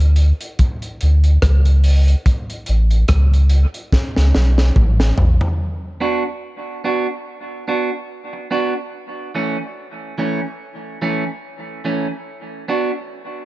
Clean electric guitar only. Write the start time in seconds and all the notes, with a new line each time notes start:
6.00 B3 D4 F#4
6.84 B3 D4 F#4
7.68 B3 D4 F#4
8.33 muted clean electric guitar stroke
8.51 B3 D4 F#4
9.35 E3 A3 C#4
10.18 E3 A3 C#4
11.02 E3 A3 C#4
11.85 E3 A3 C#4
12.68 B3 D4 F#4